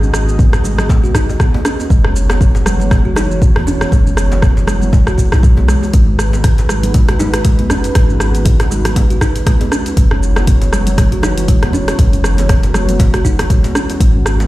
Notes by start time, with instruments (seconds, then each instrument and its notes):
Already playing: 808-style bass G#1, analog synth pad B3 F#4 G#4 D#5
0.03 shaker
0.14 cross-stick, muted conga, shaker
0.28 high conga, shaker
0.39 kalimba B3, kick, djembe bass, shaker
0.53 cross-stick, djembe slap, muted conga, shaker
0.64 kalimba G#3, djembe tone, low conga, shaker
0.78 cross-stick, high conga, low conga, shaker
0.89 kalimba G#3, kick, djembe slap, djembe tone, shaker
1.04 kalimba F#4, shaker
1.15 kalimba D#4, kick, cross-stick, shaker
1.29 muted conga, djembe tone, shaker
1.40 kalimba B3, kick, cross-stick, high conga, shaker
1.54 djembe slap, high conga, djembe tone
1.65 kalimba C#4, cross-stick, shaker
1.79 muted conga, djembe tone, shaker
1.90 808-style bass F#1, analog synth pad E3 F#4 C#5, kalimba G#3, kick, shaker
2.04 cross-stick
2.16 muted conga, shaker
2.30 cross-stick, djembe slap, high conga, shaker
2.41 kalimba B3, kick, shaker
2.55 djembe slap, muted conga, shaker
2.66 kalimba G#3, cross-stick, low conga, shaker
2.80 high conga, low conga, shaker
2.91 kalimba G#3, kick, cross-stick, muted conga, djembe tone, high conga, shaker
3.05 kalimba F#4
3.16 kalimba D#4, cross-stick, djembe slap, djembe tone, high conga, low conga, shaker
3.31 muted conga, shaker
3.42 kalimba B3, kick, shaker
3.56 cross-stick, djembe tone, high conga
3.67 808-style bass E1, kalimba C#4, djembe bass, shaker
3.81 cross-stick, muted conga, djembe tone, shaker
3.91 808-style bass F#1, kalimba G#3, kick, djembe bass, shaker
4.07 shaker
4.17 cross-stick, muted conga, shaker
4.32 djembe slap, high conga, shaker
4.42 kalimba B3, kick, cross-stick, djembe bass, shaker
4.57 djembe slap, muted conga, shaker
4.67 kalimba G#3, cross-stick, djembe tone, low conga, shaker
4.82 high conga, low conga, shaker
4.93 kalimba G#3, kick, muted conga, djembe slap, djembe tone, shaker
5.07 kalimba F#4, cross-stick, shaker
5.18 kalimba F#4, kick, shaker
5.32 808-style bass B1, kalimba D#4, cross-stick, muted conga, djembe tone, shaker
5.43 kalimba G#3, kick, high conga, shaker
5.57 djembe slap, high conga, djembe tone
5.68 kalimba G#3, cross-stick, shaker
5.83 muted conga, djembe tone, shaker
5.93 808-style bass G#1, kalimba G#3, analog synth pad G#3 D#4 F#4 B4, kick, closed hi-hat, shaker
6.19 cross-stick, muted conga, shaker
6.33 djembe slap, high conga, shaker
6.44 kalimba B3, kick, cross-stick, closed hi-hat, shaker
6.58 closed hi-hat, muted conga, djembe slap, shaker
6.69 kalimba G#3, cross-stick, low conga, shaker
6.83 closed hi-hat, high conga, low conga, shaker
6.94 kalimba G#3, kick, closed hi-hat, muted conga, djembe tone, high conga, shaker
7.08 kalimba F#4, cross-stick, closed hi-hat
7.19 kalimba D#4, djembe slap, high conga, djembe tone, low conga, shaker
7.34 cross-stick, closed hi-hat, muted conga, shaker
7.45 kalimba G#3, kick, closed hi-hat, shaker
7.59 closed hi-hat, djembe tone, high conga
7.70 808-style bass F#1, kalimba C#4, cross-stick, djembe bass, shaker
7.84 closed hi-hat, muted conga, djembe tone, shaker
7.95 808-style bass G#1, kalimba G#3, kick, cross-stick, closed hi-hat, djembe bass, shaker
8.10 shaker
8.20 cross-stick, muted conga, shaker
8.34 closed hi-hat, high conga, shaker
8.45 kalimba B3, kick, closed hi-hat, djembe bass, shaker
8.60 cross-stick, closed hi-hat, muted conga, djembe slap, shaker
8.70 kalimba G#3, djembe tone, low conga, shaker
8.85 cross-stick, closed hi-hat, high conga, low conga, shaker
8.96 kalimba G#3, kick, closed hi-hat, muted conga, djembe slap, djembe tone, shaker
9.10 kalimba F#4, closed hi-hat, shaker
9.21 kalimba D#4, kick, cross-stick, shaker
9.36 closed hi-hat, muted conga, djembe tone, shaker
9.46 kalimba G#3, kick, cross-stick, closed hi-hat, high conga, shaker
9.60 closed hi-hat, djembe slap, high conga, djembe tone
9.72 kalimba C#4, cross-stick, shaker
9.86 closed hi-hat, muted conga, djembe tone, shaker
9.97 808-style bass F#1, analog synth pad E3 B3 F#4 C#5, kalimba G#3, kick, closed hi-hat, shaker
10.11 cross-stick
10.23 muted conga, shaker
10.36 cross-stick, djembe slap, high conga, shaker
10.47 kalimba B3, kick, closed hi-hat, shaker
10.61 closed hi-hat, djembe slap, muted conga, shaker
10.73 kalimba G#3, cross-stick, low conga, shaker
10.87 closed hi-hat, high conga, low conga, shaker
10.97 kalimba G#3, kick, cross-stick, closed hi-hat, muted conga, high conga, djembe tone, shaker
11.12 kalimba F#4, closed hi-hat
11.23 kalimba D#4, cross-stick, djembe slap, high conga, djembe tone, low conga, shaker
11.38 closed hi-hat, muted conga, shaker
11.48 kalimba G#3, kick, closed hi-hat, shaker
11.62 cross-stick, closed hi-hat, high conga, djembe tone
11.73 808-style bass E1, kalimba C#4, djembe bass, shaker
11.87 cross-stick, closed hi-hat, muted conga, djembe tone, shaker
11.99 808-style bass F#1, kalimba G#3, kick, closed hi-hat, djembe bass, shaker
12.13 closed hi-hat, shaker
12.24 cross-stick, muted conga, shaker
12.38 closed hi-hat, djembe slap, high conga, shaker
12.49 kalimba B3, kick, cross-stick, closed hi-hat, djembe bass, shaker
12.63 closed hi-hat, muted conga, djembe slap, shaker
12.74 kalimba G#3, cross-stick, djembe tone, low conga, shaker
12.89 closed hi-hat, high conga, low conga, shaker
12.99 kalimba G#3, kick, closed hi-hat, djembe slap, muted conga, djembe tone, shaker
13.14 kalimba F#4, cross-stick, closed hi-hat, shaker
13.25 kalimba D#4, kick, shaker
13.39 cross-stick, closed hi-hat, muted conga, djembe tone, shaker
13.50 kalimba G#3, kick, closed hi-hat, high conga, shaker
13.64 closed hi-hat, djembe slap, high conga, djembe tone, shaker
13.75 kalimba C#4, cross-stick, shaker
13.89 closed hi-hat, muted conga, djembe tone, shaker
14.00 808-style bass G#1, kalimba G#3, analog synth pad G#3 D#4 B4, kick, closed hi-hat, shaker
14.26 cross-stick, muted conga, shaker
14.39 djembe slap, high conga, shaker